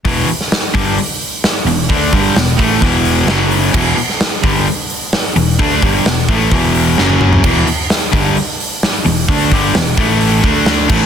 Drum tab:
CC |----------------|----------------|x---------------|----------------|
HH |o-o-o---o-o-o-o-|o-o-o-o-o-o-o-o-|--o-o-o-o-o-o-o-|o-o-o---o-o-----|
SD |---oo-------o---|----o-------o---|---oo-------oo--|----o-------o---|
T1 |----------------|----------------|----------------|-------------o--|
T2 |----------------|----------------|----------------|--------------o-|
FT |----------------|----------------|----------------|---------------o|
BD |o-----o---------|o-o---o-o-------|o-----o---------|o-o---o-o-------|

CC |x---------------|--------------x-|
HH |--o-o-o-o-o-o-o-|--o-o-o-o---o---|
SD |----o-------o---|----o-------o---|
T1 |----------------|----------------|
T2 |----------------|----------------|
FT |----------------|----------------|
BD |o-----o---------|o-o---o---o---o-|